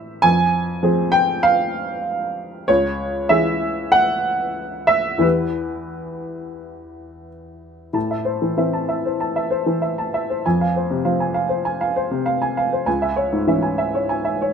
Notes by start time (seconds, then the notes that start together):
Already playing: E3 C4 A4 E5
0.22 F2 G#5
0.83 F3 C4 G#4
1.12 G5
1.43 F5
2.68 C#2 C#5
3.29 E3 E4 G#4 E5
3.92 F#5
4.87 E5
5.18 E2 E3 E4 G4 B4
7.93 A2 A5
8.11 E5
8.25 C5
8.42 E3
8.58 E3 C4 E5
8.73 A5
8.89 E5
9.06 C5
9.20 A5
9.36 E5
9.51 C5
9.66 E3
9.82 E5
9.98 A5
10.14 E5
10.30 C5
10.46 F2 G#5
10.61 F5
10.76 C5
10.90 C3
11.05 F3 C4 F5
11.20 G#5
11.34 F5
11.49 C5
11.65 G#5
11.81 F5
11.96 C5
12.11 C3
12.26 F5
12.42 G#5
12.57 F5
12.73 C5
12.86 C#2 G#5
13.02 E5
13.16 C#5
13.32 G#2
13.47 E3 C#4 E5
13.62 G#5
13.78 E5
13.95 C#5
14.09 G#5
14.25 E5
14.42 C#5